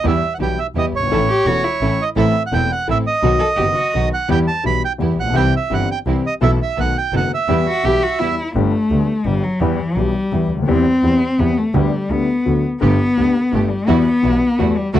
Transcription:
0.04 double bass E2, grand piano E2 E3 G3 B3 G4, string section B3 E4 G4
0.08 bandoneon E5
0.34 bandoneon F#5
0.39 double bass B1, grand piano B1 B2 E3 G3 B3 G4, string section B3 E4 G4, bandoneon G5
0.59 bandoneon E5
0.75 double bass E2, grand piano E2 E3 G3 B3 G4, string section B3 E4 G4, bandoneon D#5
0.93 double bass G1, bandoneon C#5
0.99 grand piano F#1
1.03 grand piano G1
1.07 grand piano G#1 A2, double bass A1, string section C#4
1.11 grand piano A1 E3 A3 C#4 A4, string section E4 A4
1.29 cello G4
1.46 double bass E1, grand piano E1 E2 E3 A3 C#4 A4, string section C#4 E4 A4, cello F#4
1.64 cello E4
1.81 double bass A1, grand piano A1 A2 E3 A3 C#4 A4, string section C#4 E4 A4
2.02 bandoneon D#5
2.16 grand piano A1 A2 E3 A3 C4 A4, double bass A1, string section C4 E4 A4, bandoneon E5
2.46 bandoneon F#5
2.52 double bass E1, grand piano E1 E2 E3 A3 C4 A4, string section C4 E4 A4, bandoneon G5
2.72 bandoneon F#5
2.87 grand piano A1 A2 E3 A3 C4 A4, double bass A1, string section C4 E4 A4, bandoneon E5
3.07 bandoneon D#5
3.23 grand piano B1 B2 D#3 F#3 B3 F#4, double bass B1, string section B3 D#4 F#4
3.39 cello A4
3.56 double bass F#1, grand piano F#1 F#2 D#3 F#3 B3 F#4, string section B3 D#4 F#4, cello G4
3.74 cello F#4
3.94 grand piano B1 B2 D#3 F#3 B3 F#4, double bass B1, string section B3 D#4 F#4
4.14 bandoneon F#5
4.28 grand piano E2 E3 G3 B3 G4, double bass E2, string section B3 E4 G4, bandoneon G5
4.48 bandoneon A5
4.63 grand piano B1 B2 E3 G3 B3 G4, double bass B1, string section B3 E4 G4, bandoneon B5
4.85 bandoneon G5
4.98 grand piano E2 E3 G3 B3 G4, double bass E2, string section B3 E4 G4
5.17 grand piano A1, double bass A#1, bandoneon F#5
5.25 grand piano A#1
5.30 grand piano B1 C2 G3
5.34 double bass C2, grand piano C3 E3 C4 G4, string section C4 E4 G4, bandoneon G5
5.56 bandoneon E5
5.70 grand piano G1 G2 E3 G3 C4 G4, double bass G1, string section C4 E4 G4, bandoneon F#5
5.91 bandoneon G5
6.06 grand piano C2 C3 E3 G3 C4 G4, double bass C2, string section C4 E4 G4
6.27 bandoneon D#5
6.41 grand piano B1 B2 E3 A3 B3 F#4, double bass B1, string section B3 E4 A4, bandoneon E5
6.62 bandoneon E5
6.77 grand piano B1 B2 D#3 A3 B3 F#4, double bass B1, string section B3 D#4 A4, bandoneon F#5
6.98 bandoneon G5
7.13 double bass F#1, grand piano F#1 F#2 D#3 A3 B3 F#4, string section B3 D#4 A4, bandoneon F#5
7.34 bandoneon E5
7.48 double bass E2, grand piano E2 E3 G3 B3 G4, string section B3 E4 G4
7.67 cello F#4
7.84 grand piano B1 B2 E3 G3 B3 G4, double bass B1, string section B3 E4 G4, cello G4
8.03 cello F#4
8.19 grand piano E2 E3 G3 B3 G4, string section B3 E4 G4, cello E4
8.55 double bass G1, grand piano G1 G2 D3 G3 B3 G4, cello A3
8.90 double bass D2, grand piano D2 D3 G3 B3 G4
9.25 double bass G1, grand piano G1 G2 D3 G3 B3 G4, cello G3
9.44 cello F#3
9.60 double bass E2, grand piano E2 E3 G3 B3 G4, cello E3
9.96 double bass B1, grand piano B1 B2 E3 G3 B3 G4, cello G3
10.32 double bass E2, grand piano E2 E3 G3 B3 G4
10.49 double bass D2
10.55 grand piano C#2
10.59 grand piano D2 D#2
10.68 double bass E2, grand piano E2 E3 G3 C4 G4, cello C4
11.03 double bass E2, grand piano E2 E3 G3 C4 G4
11.39 grand piano E2 E3 G3 C4 G4, double bass E2, cello B3
11.58 cello A3
11.74 grand piano D2 D3 G3 B3 G4, double bass D2, cello G3
12.10 double bass D2, grand piano D2 D3 G3 B3 G4, cello B3
12.45 grand piano D2 D3 F#3 A3 F#4, double bass D2
12.80 grand piano G1 G2 D3 A3 B3 G4, double bass G1, string section A3 B3 G4, cello B3
13.17 grand piano D2 D3 A3 B3 G4, double bass D2, string section A3 B3 G4
13.52 grand piano G1 G2 D3 A3 B3 G4, double bass G1, string section A3 B3 G4, cello A3
13.70 cello G3
13.88 grand piano E2 E3 G3 B3 F#4, double bass E2, string section G3 E4 F#4, cello B3
14.22 grand piano B1 B2 E3 G3 B3 F#4, double bass B1, string section G3 E4 F#4
14.58 grand piano E2 E3 G3 B3 F#4, double bass E2, string section G3 E4 F#4, cello A3
14.77 cello G3
14.93 grand piano D2 D3 F#3 A3 F#4, double bass D2, string section A3 D4 F#4, cello A3

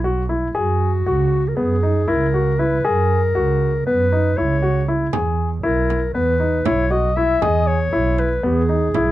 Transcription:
Already playing: double bass B1, clarinet E4
0.04 grand piano F#4
0.29 grand piano E4
0.55 double bass F#2, clarinet F#4, grand piano G#4
1.06 double bass C#2, grand piano F#4
1.48 clarinet A#4
1.56 double bass F#2, grand piano B3, clarinet G#4
1.83 grand piano D#4
2.08 double bass C#2, grand piano E4, clarinet A#4
2.34 grand piano F#4
2.59 grand piano E4, clarinet B4
2.84 double bass F#2, grand piano G#4, clarinet A#4
3.35 double bass C#2, grand piano F#4
3.86 double bass F#2, grand piano B3, clarinet B4
4.12 grand piano D#4
4.37 double bass C#2, grand piano E4, clarinet C#5
4.62 grand piano F#4
4.88 grand piano E4
5.13 double bass E2, grand piano G#4, frame drum
5.63 double bass B1, grand piano E4, clarinet A#4
5.90 frame drum
6.14 double bass E2, grand piano B3, clarinet B4
6.40 grand piano D#4
6.65 double bass B1, grand piano E4, clarinet C#5, frame drum
6.91 grand piano F#4, clarinet D#5, frame drum
7.16 grand piano E4, clarinet E5
7.42 double bass E2, grand piano G#4, clarinet D#5, frame drum
7.67 clarinet C#5
7.93 double bass B1, grand piano E4
8.18 clarinet B4, frame drum
8.43 double bass E2, grand piano B3, clarinet G#4
8.69 grand piano D#4, frame drum
8.94 double bass B1, grand piano E4, frame drum

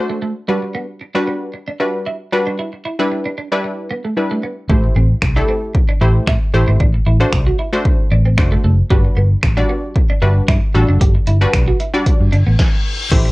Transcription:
Already playing: synth pluck A3 D4 F#4 C5
0.10 clean electric guitar A3
0.22 clean electric guitar A3
0.48 synth pluck G3 D4 F#4 B4, clean electric guitar G3
0.62 muted clean electric guitar stroke
0.75 clean electric guitar B3
1.01 muted clean electric guitar stroke
1.15 synth pluck G3 D4 F#4 B4, clean electric guitar D4
1.27 clean electric guitar B3
1.54 muted clean electric guitar stroke
1.68 clean electric guitar D4
1.80 synth pluck G3 D4 F#4 B4, clean electric guitar E4
2.06 clean electric guitar E4
2.32 synth pluck G3 D4 F#4 B4, muted clean electric guitar stroke
2.47 clean electric guitar D4
2.59 clean electric guitar E4
2.73 muted clean electric guitar stroke
2.85 clean electric guitar E4
2.99 synth pluck G3 D4 E4 B4
3.12 muted clean electric guitar stroke
3.26 clean electric guitar D4
3.38 clean electric guitar D4
3.52 synth pluck G3 D4 E4 B4
3.64 muted clean electric guitar stroke
3.91 clean electric guitar B3
4.05 clean electric guitar A3
4.17 synth pluck G3 D4 E4 B4, muted clean electric guitar stroke
4.31 clean electric guitar A3
4.43 clean electric guitar B3
4.69 fingered electric bass A1, synth pluck A3 E4 G4 C5, clean electric guitar A3, kick
4.84 muted clean electric guitar stroke
4.96 fingered electric bass A1, clean electric guitar C4
5.22 fingered electric bass C2, finger snap, muted clean electric guitar stroke, kick
5.36 synth pluck A3 E4 G4 A4, clean electric guitar D4
5.48 clean electric guitar C4
5.75 muted clean electric guitar stroke, kick
5.89 clean electric guitar D4
6.01 fingered electric bass A1, synth pluck A3 E4 G4 C5, clean electric guitar E4
6.27 fingered electric bass A2, clean electric guitar E4, finger snap, kick
6.54 fingered electric bass A1, synth pluck A3 E4 G4 C5, muted clean electric guitar stroke
6.68 fingered electric bass G#1, clean electric guitar C4
6.80 fingered electric bass A1, clean electric guitar D4, kick
6.94 muted clean electric guitar stroke
7.06 fingered electric bass A1, clean electric guitar E4
7.20 synth pluck A3 D4 F#4 C5
7.33 fingered electric bass C2, finger snap, muted clean electric guitar stroke, kick
7.47 clean electric guitar F#4
7.59 clean electric guitar E4
7.73 synth pluck A3 D4 F#4 C5
7.85 muted clean electric guitar stroke, kick
8.12 fingered electric bass A1, clean electric guitar D4
8.26 clean electric guitar C4
8.38 fingered electric bass F#1, synth pluck A3 D4 F#4 C5, finger snap, muted clean electric guitar stroke, kick
8.52 clean electric guitar A3
8.64 fingered electric bass F#1, clean electric guitar A3
8.90 fingered electric bass G1, synth pluck G3 D4 F#4 B4, clean electric guitar G3, kick
9.05 muted clean electric guitar stroke
9.17 fingered electric bass G1, clean electric guitar B3
9.43 fingered electric bass A1, finger snap, muted clean electric guitar stroke, kick
9.57 synth pluck G3 D4 F#4 D5, clean electric guitar D4
9.69 clean electric guitar B3
9.96 muted clean electric guitar stroke, kick
10.10 clean electric guitar D4
10.22 fingered electric bass G1, synth pluck G3 D4 F#4 B4, clean electric guitar E4
10.48 fingered electric bass G2, clean electric guitar E4, finger snap, kick
10.74 fingered electric bass A1, synth pluck G3 D4 F#4 A4, muted clean electric guitar stroke
10.89 fingered electric bass F#1, clean electric guitar D4
11.01 fingered electric bass G1, clean electric guitar G4, kick, closed hi-hat
11.15 muted clean electric guitar stroke
11.27 fingered electric bass G1, clean electric guitar E4, closed hi-hat
11.41 synth pluck G3 D4 F#4 B4
11.53 fingered electric bass B1, finger snap, muted clean electric guitar stroke, kick, closed hi-hat
11.68 clean electric guitar F#4
11.80 clean electric guitar E4, closed hi-hat
11.94 synth pluck G3 D4 F#4 D5
12.06 muted clean electric guitar stroke, kick, closed hi-hat, reverse cymbal
12.20 fingered electric bass G2
12.32 fingered electric bass G1, clean electric guitar D4, closed hi-hat
12.47 fingered electric bass A1, clean electric guitar B3
12.59 kick, snare
13.11 fingered electric bass A1, synth pluck A3 E4 G4 C5, kick, closed hi-hat, crash, impact
13.25 muted clean electric guitar stroke

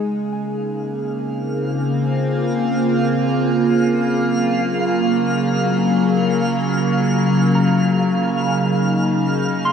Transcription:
Already playing: ambient pad C#3 D#4 G#4, synth texture F5
0.20 ambient pad A#3
0.33 synth bell G#5
0.99 ambient pad C4
1.40 ambient pad F4
3.85 ambient pad F#3
7.55 synth bell A#5
8.21 ambient pad D#4
9.65 synth bell C6

